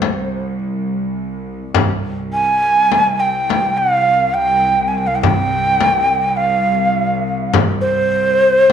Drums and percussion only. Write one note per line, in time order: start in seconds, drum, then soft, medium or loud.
0.02 frame drum medium
0.60 darbuka ka soft
1.74 frame drum medium
1.74 darbuka dum medium
2.92 darbuka tek medium
2.92 frame drum medium
3.50 darbuka tek medium
3.50 frame drum medium
4.65 darbuka ka soft
5.23 frame drum medium
5.23 darbuka dum medium
5.80 darbuka tek medium
5.80 frame drum medium
6.39 darbuka ka soft
7.53 frame drum loud
7.53 darbuka dum loud
8.12 darbuka ka soft